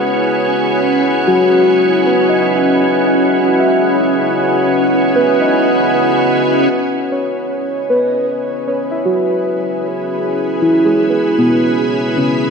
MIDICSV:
0, 0, Header, 1, 5, 480
1, 0, Start_track
1, 0, Key_signature, 4, "minor"
1, 0, Tempo, 779221
1, 301, Time_signature, 4, 2, 24, 8
1, 7701, End_track
2, 0, Start_track
2, 0, Title_t, "Glass harmonica"
2, 0, Program_c, 0, 92
2, 0, Note_on_c, 0, 66, 63
2, 0, Note_on_c, 0, 78, 61
2, 4149, Note_off_c, 0, 66, 0
2, 4149, Note_off_c, 0, 78, 0
2, 7701, End_track
3, 0, Start_track
3, 0, Title_t, "Soft synth lead"
3, 0, Program_c, 1, 80
3, 4158, Note_on_c, 1, 71, 110
3, 4658, Note_on_c, 1, 73, 116
3, 4667, Note_off_c, 1, 71, 0
3, 4899, Note_on_c, 1, 75, 105
3, 4908, Note_off_c, 1, 73, 0
3, 5121, Note_on_c, 1, 73, 106
3, 5130, Note_off_c, 1, 75, 0
3, 5355, Note_on_c, 1, 71, 93
3, 5364, Note_off_c, 1, 73, 0
3, 5588, Note_off_c, 1, 71, 0
3, 5603, Note_on_c, 1, 71, 94
3, 6084, Note_on_c, 1, 68, 84
3, 6094, Note_off_c, 1, 71, 0
3, 7701, Note_off_c, 1, 68, 0
3, 7701, End_track
4, 0, Start_track
4, 0, Title_t, "Synth keys"
4, 0, Program_c, 2, 88
4, 0, Control_c, 2, 64, 127
4, 0, Note_on_c, 2, 68, 62
4, 0, Note_on_c, 2, 71, 74
4, 0, Note_on_c, 2, 73, 49
4, 120, Note_off_c, 2, 71, 0
4, 784, Note_on_c, 2, 66, 86
4, 1270, Note_on_c, 2, 71, 55
4, 1316, Note_off_c, 2, 66, 0
4, 1411, Note_on_c, 2, 75, 47
4, 1572, Note_on_c, 2, 76, 53
4, 1799, Note_off_c, 2, 71, 0
4, 1930, Note_off_c, 2, 75, 0
4, 2070, Note_off_c, 2, 76, 0
4, 2215, Note_on_c, 2, 76, 67
4, 2752, Note_off_c, 2, 76, 0
4, 3176, Note_on_c, 2, 71, 67
4, 3328, Note_on_c, 2, 75, 52
4, 3712, Note_off_c, 2, 71, 0
4, 3849, Note_off_c, 2, 75, 0
4, 4151, Control_c, 2, 64, 0
4, 4152, Note_off_c, 2, 73, 0
4, 4156, Note_off_c, 2, 68, 0
4, 4254, Control_c, 2, 64, 127
4, 4385, Note_on_c, 2, 73, 56
4, 4865, Note_on_c, 2, 71, 63
4, 4917, Note_off_c, 2, 73, 0
4, 5344, Note_on_c, 2, 73, 53
4, 5397, Note_off_c, 2, 71, 0
4, 5490, Note_on_c, 2, 76, 48
4, 5577, Note_on_c, 2, 66, 45
4, 5876, Note_off_c, 2, 73, 0
4, 6009, Note_off_c, 2, 76, 0
4, 6113, Note_off_c, 2, 66, 0
4, 6541, Note_on_c, 2, 64, 55
4, 6686, Note_on_c, 2, 68, 50
4, 6835, Note_on_c, 2, 71, 45
4, 7013, Note_on_c, 2, 59, 53
4, 7075, Note_off_c, 2, 64, 0
4, 7207, Note_off_c, 2, 68, 0
4, 7342, Note_off_c, 2, 71, 0
4, 7497, Note_on_c, 2, 61, 63
4, 7551, Note_off_c, 2, 59, 0
4, 7701, Note_off_c, 2, 61, 0
4, 7701, End_track
5, 0, Start_track
5, 0, Title_t, "Ambient pad"
5, 0, Program_c, 3, 92
5, 0, Note_on_c, 3, 61, 64
5, 0, Note_on_c, 3, 64, 85
5, 0, Note_on_c, 3, 68, 74
5, 0, Note_on_c, 3, 71, 77
5, 7701, Note_off_c, 3, 61, 0
5, 7701, Note_off_c, 3, 64, 0
5, 7701, Note_off_c, 3, 68, 0
5, 7701, Note_off_c, 3, 71, 0
5, 7701, End_track
0, 0, End_of_file